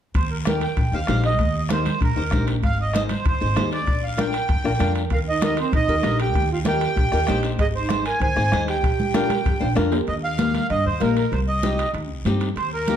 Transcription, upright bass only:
0.15 D#2
0.77 A#1
0.92 D#2
1.08 A#1
1.39 D#2
2.01 A#1
2.17 D#2
2.31 A#1
2.63 G#1
3.25 D#2
3.41 G#1
3.57 D#2
3.88 A#1
4.49 F2
4.64 A#1
4.80 F2
5.10 D#2
5.73 A#1
5.88 D#2
6.04 A#1
6.34 D#2
6.96 A#1
7.13 D#2
7.29 A#1
7.59 G#1
8.20 D#2
8.37 G#1
8.52 D#2
8.83 A#1
9.45 F2
9.62 A#1
9.77 F2
10.08 D#2
10.70 G2
10.85 D#2
11.01 A#1
11.32 C2
11.93 D#2
12.10 C2
12.25 G2
12.56 D#2

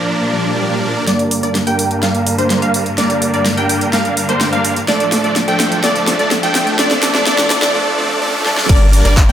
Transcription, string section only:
Already playing: A#2 F3 D4
1.07 G2 D3 A#3
4.88 D2 A2 F3
6.79 A#2 D4
8.69 G3 D4 A#4

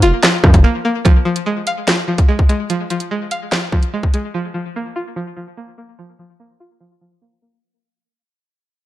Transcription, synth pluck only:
Already playing: F3 A#3
0.03 F4
0.23 F3
0.44 F3
0.64 A#3
0.85 A#3
1.05 F3
1.25 F3
1.46 G#3
1.67 F5
1.87 F3
2.08 F3
2.28 G#3
2.49 G#3
2.70 F3
2.90 F3
3.11 G#3
3.31 F5
3.52 F3
3.73 F3
3.94 G#3
4.14 G#3
4.34 F3
4.54 F3
4.76 A#3
4.96 F4
5.16 F3
5.37 F3
5.57 A#3
5.78 A#3
5.99 F3
6.19 F3
6.40 A#3
6.60 F4
6.80 F3
7.01 F3
7.22 A#3
7.42 A#3

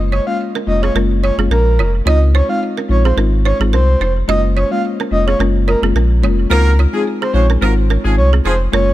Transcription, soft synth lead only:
0.12 C#5
0.27 F5
0.67 D#5
0.82 C#5
1.23 C#5
1.50 A#4
2.06 D#5
2.34 C#5
2.49 F5
2.90 C#5
3.05 C5
3.45 C#5
3.72 C5
4.28 D#5
4.56 C#5
4.72 F5
5.12 D#5
5.27 C#5
5.67 A#4
6.50 A#4
6.94 G#4
7.21 C5
7.34 C#5
8.17 C#5
8.45 C5
8.73 C#5

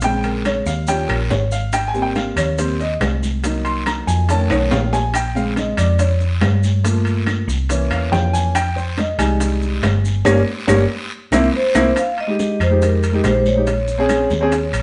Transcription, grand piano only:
0.03 C#3 G#3 C4 G5
0.25 A#4
0.46 C#5
0.67 F5
0.87 F3 G3 C#4 G5
1.08 A#4
1.30 C#5
1.52 F5
1.74 G5
1.88 G#5
1.94 G3 A#3 C4
2.02 G5
2.16 F5
2.37 C#5
2.58 G3 A#3 C4 C5
2.80 D#5
3.43 F#3 A#3 D#4
3.65 C6
3.87 A#5
4.07 G#5
4.29 D#3 A3 C#4 A5
4.50 C#5
4.71 F5
4.93 G#5
5.16 G5
5.35 C#3 G#3 C4 F5
5.58 D#5
5.78 D5
5.99 C#5
6.84 F3 A3 A#3
7.70 E3 A#3 C#4
7.91 F5
8.12 G5
8.33 G#5
8.55 G5
8.76 C5
8.98 D#5
9.18 G3 G#3 D#4 G#5
10.25 G3 A#3 C#4
10.67 G3 A#3 C#4
11.33 A#3 C4 E4
11.74 A#3 C4 E4
12.27 G#3 D#4 G4
12.70 G#3 D#4 G4
13.12 G#3 D#4 G4
13.56 G#3 D#4 G4
13.98 C4 C#4 G#4
14.41 C4 C#4 G#4

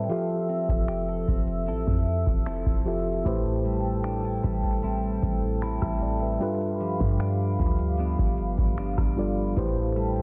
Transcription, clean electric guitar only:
Already playing: C4 E4
0.10 F3
0.49 C4
0.88 G4
1.08 A4
1.28 C4
1.67 C4 E4 A4
2.46 C4 E4 A4
3.25 A2
3.65 G3
4.04 D4
4.24 E4
4.43 G3
4.83 G3 C4 E4
5.62 G3 C4 E4
6.41 G2
6.80 F3
7.20 D4
7.59 F3
7.99 F3 B3 D4
8.78 F3 B3 D4
9.56 A2
9.96 G3

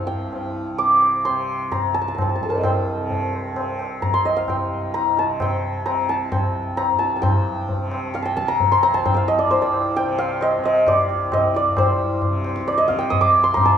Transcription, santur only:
Already playing: F5 A5
0.07 G5
0.78 D6
1.25 C6
1.72 A#5
1.94 A5
2.02 A5
2.08 A5
2.15 A5
2.22 A5
2.29 A5
2.35 A5
2.43 A4 A5
2.49 A#4 C5 A5
2.55 D5 D#5
2.61 F5 G5
4.02 A#5
4.14 C6
4.25 D#5
4.36 F5
4.50 G5
4.94 A#5
5.19 A5
5.42 G5
5.86 A#5
6.09 A5
6.32 G5
6.77 A#5
6.99 A5
7.16 A5
7.22 G5
8.15 F5
8.22 G5 A5
8.37 A5
8.48 A#5
8.72 C6
8.83 A#5
8.94 A5
9.05 G5
9.14 F5 G5
9.28 D#5
9.39 D5
9.51 C5
9.62 D5
9.96 G5
10.18 F5
10.42 D#5
10.65 D#5
10.88 D5
11.33 D#5
11.56 D5
11.78 C5
12.68 D5
12.78 D#5
12.88 F5
12.99 G5
13.10 D#6
13.21 D6
13.44 C6
13.54 A#5
13.65 A5

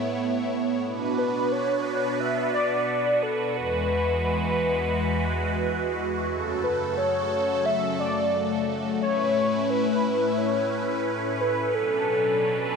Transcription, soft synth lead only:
1.18 B4
1.52 C#5
2.20 E5
2.54 D5
3.23 A4
3.57 B4
4.25 B4
6.64 B4
6.97 C#5
7.66 E5
8.00 D5
9.02 C#5
9.70 B4
10.38 C#5
11.40 B4
11.75 A4

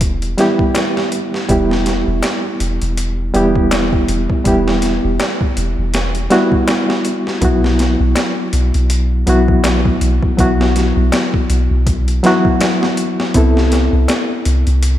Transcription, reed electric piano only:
Already playing: G3 B3 E4 G4
0.38 G3 B3 E4 G4
1.48 G3 B3 E4 G4
3.33 G3 B3 E4 G4
4.44 G3 B3 E4 G4
6.31 G3 B3 E4 F#4
7.41 F#3 B3 E4 F#4
9.27 F#3 B3 E4 F#4
10.37 F#3 B3 E4 F#4
12.23 F#3 B3 E4 F#4
13.34 B3 C4 E4 A4

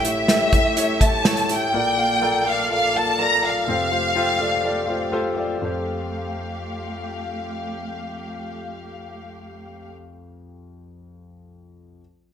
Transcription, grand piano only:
Already playing: A1 A2
0.04 E4 G4 A4 C#5
0.28 E4 G4 A4 E5
0.53 E4 G4 A4 E5
0.76 E4 G4 A4 C#5
1.00 E4 G4 A4 E5
1.25 E4 G4 A4 C#5
1.49 E4 G4 A4 E5
1.73 A#1 A#2 F4 A4 A#4 D5
1.97 F4 A4 A#4 F5
2.21 F4 A4 A#4 D5
2.45 F4 A4 A#4 D5
2.70 F4 A4 A#4 D5
2.95 F4 A4 A#4 F5
3.18 F4 A4 A#4 D5
3.43 F4 A4 A#4 D5
3.67 F1 F2 F4 G4 A4 C5
3.91 F4 G4 A4 C5
4.15 F4 G4 A4 C5
4.39 F4 G4 A4 D5
4.63 F4 G4 A4 D5
4.87 F4 G4 A4 C5
5.12 F4 G4 A4 C5
5.36 F4 G4 A4 D5
5.58 F2 F4 G4
5.63 A4 C5

